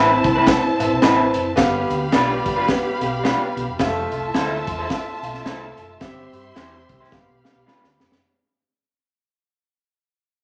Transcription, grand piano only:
0.00 0.37 C4 medium
0.00 0.37 B4 medium
0.00 0.37 E5 loud
0.46 0.72 C4 medium
0.46 0.72 B4 medium
0.46 0.72 E5 medium
0.79 0.97 C4 medium
0.79 0.97 B4 medium
0.79 0.97 E5 medium
1.01 1.47 C4 medium
1.01 1.47 B4 medium
1.01 1.10 D#5 medium
1.08 1.50 E5 medium
1.56 2.02 B3 loud
1.56 2.02 G4 medium
1.56 2.02 F5 loud
2.12 2.58 B3 medium
2.12 2.58 G4 medium
2.12 2.58 D5 medium
2.68 2.93 B3 medium
2.68 2.94 G4 medium
2.68 2.94 B4 medium
3.01 3.18 B3 medium
3.01 3.18 G4 medium
3.01 3.19 F5 medium
3.24 3.69 B3 medium
3.24 3.69 G4 medium
3.24 3.69 F5 medium
3.79 3.87 G3 medium
3.79 4.24 F4 loud
3.79 4.25 E5 loud
3.86 4.27 A3 loud
4.34 4.79 A3 medium
4.34 4.80 F4 medium
4.34 4.80 E5 medium
4.90 5.15 A3 medium
4.90 5.15 F4 medium
4.90 5.15 E5 loud
5.23 5.40 A3 medium
5.23 5.40 F4 medium
5.23 5.40 E5 medium
5.45 5.90 A3 medium
5.45 5.90 F4 medium
5.45 5.90 E5 medium
6.01 6.45 C4 loud
6.01 6.46 G4 medium
6.01 6.46 E5 loud
6.55 7.00 C4 medium
6.55 7.01 G4 medium
6.55 7.01 E5 medium
7.11 7.36 B3 medium
7.11 7.37 G4 medium
7.11 7.37 F5 medium
7.43 7.61 B3 medium
7.43 7.61 G4 medium
7.43 7.62 F5 medium
7.67 7.74 A3 medium
7.67 8.12 G4 medium
7.67 8.12 F5 medium
7.73 8.15 B3 medium

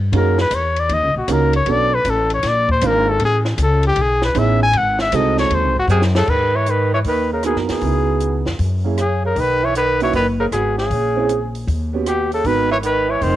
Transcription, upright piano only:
0.13 0.36 A#3 medium
0.13 0.36 C#4 medium
0.13 0.36 D#4 medium
0.13 0.37 F#4 medium
0.13 0.37 G#4 medium
1.28 1.51 A#3 medium
1.28 1.51 C#4 medium
1.28 1.51 D#4 medium
1.28 1.52 F#4 medium
1.28 1.52 A#4 medium
1.66 1.89 B3 medium
1.66 1.90 C#4 medium
1.66 1.90 D4 medium
1.66 1.90 F#4 medium
1.66 1.90 A4 medium
2.82 3.05 A#3 medium
2.82 3.05 C4 medium
2.82 3.05 D4 medium
2.82 3.06 F4 medium
2.82 3.06 A#4 medium
4.35 4.58 B3 medium
4.35 4.58 C#4 medium
4.35 4.59 D#4 medium
4.35 4.59 E4 medium
4.35 4.59 G#4 medium
5.13 5.72 G#3 medium
5.13 5.72 C4 medium
5.13 5.72 D#4 medium
5.13 5.72 F#4 medium
5.13 5.72 A4 medium
7.44 7.81 B3 medium
7.44 7.82 D#4 medium
7.44 7.83 F#4 medium
7.44 7.83 A#4 medium
7.82 8.41 B3 medium
7.82 8.42 D#4 soft
7.82 8.42 E4 soft
7.82 8.42 G#4 medium
8.84 8.96 A#3 medium
8.84 8.96 C#4 medium
8.84 8.97 E4 medium
8.84 8.97 G#4 medium
10.00 10.12 A#3 medium
10.00 10.12 C#4 medium
10.00 10.12 D#4 medium
10.00 10.13 F#4 medium
11.16 11.28 C4 medium
11.16 11.28 C#4 medium
11.16 11.28 E4 medium
11.16 11.28 G#4 medium
11.93 12.05 B3 medium
11.93 12.05 C#4 medium
11.93 12.05 F#4 medium
11.93 12.05 G4 medium
12.45 12.68 B3 medium
12.45 12.68 D#4 medium
12.45 12.69 F#4 medium
12.45 12.69 A#4 medium

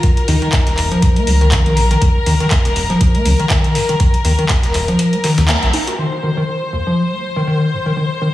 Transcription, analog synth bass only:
0.28 0.37 D#2 medium
0.67 0.96 D#1 medium
1.02 1.11 D#1 loud
1.27 1.58 C#2 medium
1.66 1.95 A#1 medium
2.02 2.18 D#1 loud
2.26 2.35 D#2 medium
2.65 2.94 D#1 medium
3.01 3.10 A#1 medium
3.25 3.34 C#2 medium
4.25 4.34 D#2 medium
4.63 4.93 D#1 medium
5.38 5.52 D#2 medium
5.63 5.69 A#1 loud

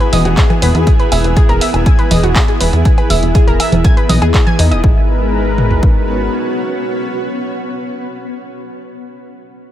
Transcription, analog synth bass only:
0.13 0.23 E1 loud
0.25 0.35 E1 medium
0.62 0.73 E1 medium
0.75 0.85 E2 medium
1.12 1.22 E1 loud
1.24 1.35 E1 medium
1.49 1.59 E1 medium
1.74 1.84 E1 medium
2.11 2.21 E1 loud
2.23 2.34 E1 medium
2.61 2.71 E1 medium
2.73 2.83 E2 medium
3.10 3.21 E1 loud
3.23 3.33 E1 medium
3.47 3.58 E1 medium
3.72 3.83 E1 medium
4.09 4.20 B1 loud
4.22 4.32 E2 medium
4.59 4.73 E2 medium
4.71 4.82 E1 medium
4.84 6.28 G#1 loud

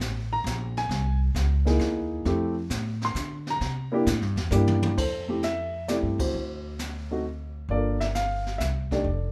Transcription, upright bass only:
0.00 0.44 A1 medium
0.44 0.89 A#1 medium
0.89 1.34 C2 medium
1.35 1.79 C#2 medium
1.80 2.24 D#2 loud
2.25 2.69 F2 medium
2.70 3.14 A2 medium
3.15 3.59 D3 medium
3.61 4.05 C3 medium
4.07 4.21 A2 medium
4.21 4.35 G2 medium
4.36 4.50 E2 medium
4.51 4.95 G2 loud
4.98 5.99 F2 medium
6.03 6.17 G2 medium
6.18 6.32 E2 medium
6.34 7.66 D2 medium
7.69 8.56 G1 medium
8.59 9.02 C2 medium
9.04 9.32 F1 medium

